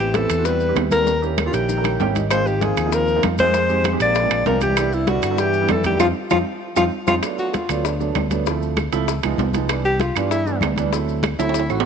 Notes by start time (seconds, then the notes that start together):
Already playing: A1
0.00 E3 G4
0.14 E3 B3 C4 E4 G4 A4, high bongo, high conga, high timbale, low timbale, maracas
0.30 E2, high conga, high timbale, claves, maracas
0.38 B3 C4 E4 F#4
0.45 G3 B4, high bongo, high conga, maracas
0.60 high bongo, high conga, maracas
0.68 B3 C4 E4 G4
0.76 D#2, high bongo, low bongo, high conga, high timbale, low timbale, claves, maracas
0.91 G3 B3 C4 E4 A4 A#4, high bongo, high conga, high timbale, maracas
1.07 high bongo, high conga, maracas
1.22 A#3 C#4 E4 G4, high conga, maracas
1.38 high bongo, high conga, high timbale, low timbale, claves, maracas
1.45 C#3 A#3 C#4 E4 F4 G4
1.53 A#1 D#3 G4, low bongo, high conga, high timbale, maracas
1.69 low bongo, high conga, maracas
1.77 A#3 C#4 E4 A#4
1.84 low bongo, high conga, high timbale, claves, maracas
2.00 G#1 A#3 C#4 E4 G4 G5, low bongo, high conga, low timbale, maracas
2.15 D#5, low bongo, high conga, high timbale, maracas
2.30 G#3 A#3 C4 D#4 F4 C5, high bongo, high conga, high timbale, claves, maracas
2.46 D#3 G4, high conga, maracas
2.61 F3 A#3 C4 D#4 F4 G#4, high bongo, high conga, high timbale, low timbale, maracas
2.77 D#2, high bongo, high conga, high timbale, claves, maracas
2.86 A#3 C4 D#4 F4
2.92 F3 A#4, high bongo, high conga, maracas
3.08 high bongo, high conga, maracas
3.16 A#3 C4 D#4 F4
3.23 F2, high bongo, low bongo, high conga, high timbale, low timbale, claves, maracas
3.38 G#3 A#3 C4 D#4 F4 C5, high bongo, high conga, high timbale, maracas
3.54 high bongo, high conga, maracas
3.69 G#3 C4 D#4 G4, high conga, maracas
3.84 high bongo, high conga, high timbale, low timbale, claves, maracas
3.92 G#3 C4 D#4 G4
3.99 A#1 A#3 D5, high bongo, high conga, high timbale, maracas
4.15 high bongo, high conga, maracas
4.23 G#3 C4 D4 F4
4.30 A#1, high bongo, high conga, high timbale, claves, maracas
4.46 C2 F3 G#3 C4 D4 F4 A#4, high bongo, low bongo, high conga, low timbale, maracas
4.61 E3 G4, high bongo, high conga, high timbale, maracas
4.77 G3 B3 D4 E4, high bongo, high timbale, claves, maracas
4.91 C3 E4, high conga, maracas
5.07 D3 G3 B3 D4 E4 F#4, high bongo, high conga, high timbale, low timbale, maracas
5.22 G2, high bongo, high conga, high timbale, claves, maracas
5.30 G3 B3 D4 E4
5.38 E3 G4, high bongo, high conga, maracas
5.53 high bongo, high conga, maracas
5.62 G3 B3 D4 E4
5.69 F2 E3 A4, high bongo, low bongo, high conga, high timbale, low timbale, claves, maracas
5.84 D#3 G3 B3 D4 E4 G4, high bongo, high conga, high timbale, maracas
6.00 F2 F3 C4 D#4 F4, high bongo, high conga, high timbale, claves, maracas
6.30 F2 F3 C4 D#4 F4, high bongo, high conga, high timbale, claves, maracas
6.76 F2 F3 C4 D#4 F4, high bongo, high conga, high timbale, claves, maracas
7.06 F2 F3 C4 D#4 F4, high bongo, high conga, high timbale, claves, maracas
7.23 F#3 A3 B3 D4, high bongo, high conga, high timbale, claves, maracas
7.39 F#4, high conga, maracas
7.53 F4, high bongo, high conga, high timbale, low timbale, maracas
7.69 D2 F#3 A3 B3 D4, high bongo, high conga, high timbale, claves, maracas
7.85 D4, high bongo, high conga, maracas
8.00 F#3 A3 B3 D4, high bongo, high conga, maracas
8.15 D2, high bongo, low bongo, high conga, high timbale, low timbale, claves, maracas
8.31 F#3 A3 B3 D4, high bongo, high conga, high timbale, maracas
8.46 F3 A3 C4 E4, high bongo, high conga, maracas
8.61 high conga, maracas
8.77 high bongo, high conga, high timbale, low timbale, claves, maracas
8.92 C#2 F3 A3 C4 E4, high bongo, high conga, high timbale, maracas
9.07 high bongo, high conga, maracas
9.23 C#2 F3 G#3 B3 D#4, high bongo, high conga, high timbale, claves, maracas
9.38 C2, high bongo, low bongo, high conga, low timbale, maracas
9.53 F3 G#3 B3 D#4, high bongo, high conga, high timbale, maracas
9.69 E3 G3 B3 D4, high bongo, high conga, high timbale, claves, maracas
9.84 G4, high conga, maracas
9.99 F4, high bongo, high conga, high timbale, low timbale, maracas
10.15 G2 E3 G3 B3 D4, high bongo, high conga, high timbale, claves, maracas
10.30 E4, high bongo, high conga, maracas
10.45 E3 G3 B3 D4, high bongo, high conga, maracas
10.61 D2, high bongo, low bongo, high conga, high timbale, low timbale, claves, maracas
10.76 E3 G3 B3 D4, high bongo, high conga, high timbale, maracas
10.92 F#3 A3 C4 E4, high bongo, high conga, maracas
11.08 high conga, maracas
11.23 high bongo, high conga, high timbale, low timbale, claves, maracas
11.39 D2 F#3 A3 C4 E4, high bongo, high conga, high timbale, maracas
11.49 high timbale
11.54 high bongo, high conga, maracas
11.60 high timbale
11.70 A1 F#3 A3 C4 E4 F#4, high bongo, high conga, high timbale, claves, maracas
11.80 low timbale